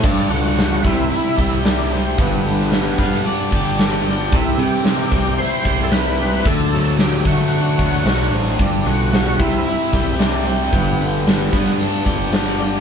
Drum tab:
CC |x---------------|----------------|----------------|----------------|
HH |--o-o-o-o-o-o-o-|o-o-o-o-o-o-o-o-|o-o-o-o-o-o-o-o-|o-o-o-o-o-o-o-o-|
SD |---oo-------o---|---oo-------o---|---oo-------o---|----o-------o---|
BD |o-----o---o-----|o-----o---o-----|o-----o---o-----|o-----o---o-----|

CC |----------------|----------------|
HH |o-o-o-o-o-o-o-o-|o-o-o-o-o-o-o-o-|
SD |----o-------o---|----o-------o---|
BD |o-----o---o-----|o-----o---o-----|